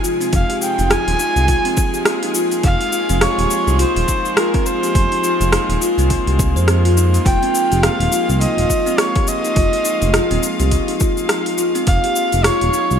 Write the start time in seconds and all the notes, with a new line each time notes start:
Already playing: C3 F3 G#3 F4 G#4
0.04 F4, cabasa
0.21 C4, open hi-hat, cabasa
0.33 F1 F5, kick, open hi-hat, cabasa
0.50 G4, open hi-hat
0.62 G5, cabasa
0.78 F1 D#4, open hi-hat, cabasa
0.90 F4 G#5, cross-stick, open hi-hat, cabasa
1.07 D#1, open hi-hat
1.19 D#4, cabasa
1.36 C2, open hi-hat, cabasa
1.48 F4, kick, open hi-hat, cabasa
1.65 A#3 C4, open hi-hat
1.77 kick, cabasa
1.94 G4, cabasa
2.05 cross-stick, open hi-hat, cabasa
2.23 D#4, open hi-hat
2.35 F4, cabasa
2.51 open hi-hat, cabasa
2.63 F1 D#4 F5, kick, open hi-hat, cabasa
2.81 open hi-hat
2.92 F4, cabasa
3.09 F1 C4, open hi-hat, cabasa
3.21 C#5, cross-stick, open hi-hat, cabasa
3.38 D#1 G4, open hi-hat
3.51 cabasa
3.67 C2 D#4, cabasa
3.79 F4 C5, open hi-hat, cabasa
3.96 D#1, open hi-hat
4.08 D#4, kick, cabasa
4.25 cabasa
4.37 F4 A#4, cross-stick, open hi-hat, cabasa
4.54 C4, kick, open hi-hat
4.66 C5, cabasa
4.83 G4, open hi-hat, cabasa
4.95 F1, kick, open hi-hat, cabasa
5.12 D#4, open hi-hat
5.23 F4, cabasa
5.40 F1, open hi-hat, cabasa
5.52 D#4, cross-stick, open hi-hat, cabasa
5.69 D#1, open hi-hat
5.81 F4, cabasa
5.98 C2 C4, open hi-hat, cabasa
6.10 kick, open hi-hat, cabasa
6.27 C2 G4, open hi-hat
6.39 kick, cabasa
6.55 F2 C5, cabasa
6.68 C4, cross-stick, open hi-hat, cabasa
6.85 F4, open hi-hat
6.97 D#4, cabasa
7.14 open hi-hat, cabasa
7.25 F1 F4 G5, kick, open hi-hat, cabasa
7.43 C4, open hi-hat
7.49 F5
7.55 cabasa
7.71 F1 G4, open hi-hat, cabasa
7.83 F5, cross-stick, open hi-hat, cabasa
8.00 D#1 D#4, open hi-hat
8.12 F4, cabasa
8.29 C2, cabasa
8.41 D#4 D#5, open hi-hat, cabasa
8.57 D#1, open hi-hat
8.69 F4, kick, cabasa
8.86 C4, cabasa
8.98 C#5, cross-stick, open hi-hat, cabasa
9.15 G4, kick, open hi-hat
9.27 D#5, cabasa
9.44 D#4, open hi-hat, cabasa
9.56 F1 F4, kick, open hi-hat, cabasa
9.73 open hi-hat
9.85 D#4, cabasa
10.02 F1, open hi-hat, cabasa
10.14 F4, cross-stick, open hi-hat, cabasa
10.31 D#1 C4, open hi-hat
10.43 cabasa
10.59 C2 G4, open hi-hat, cabasa
10.71 kick, open hi-hat, cabasa
10.88 D#4, open hi-hat
11.00 F4, kick, cabasa
11.17 cabasa
11.29 D#4, cross-stick, open hi-hat, cabasa
11.46 open hi-hat
11.58 F4, cabasa
11.75 C4, open hi-hat, cabasa
11.87 F1 F5, kick, open hi-hat, cabasa
12.04 G4, open hi-hat
12.16 cabasa
12.32 F1 D#4, open hi-hat, cabasa
12.44 F4 C#5, cross-stick, open hi-hat, cabasa
12.61 D#1, open hi-hat
12.73 D#4, cabasa
12.91 C2, cabasa